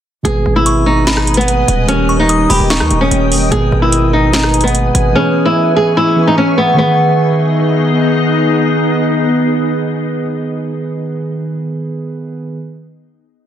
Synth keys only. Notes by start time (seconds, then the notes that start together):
0.23 B2 G#3 B3 G#4
0.27 B4
1.86 D#3 G3 A#3 G4
1.91 A#4
3.49 B2 G#3 B3 G#4
3.54 B4
5.13 E3 B3 C#4 G#4
5.17 B4
6.16 E3 B3 C#4 G#4 B4
6.74 D#3 B3
6.80 G#4 B4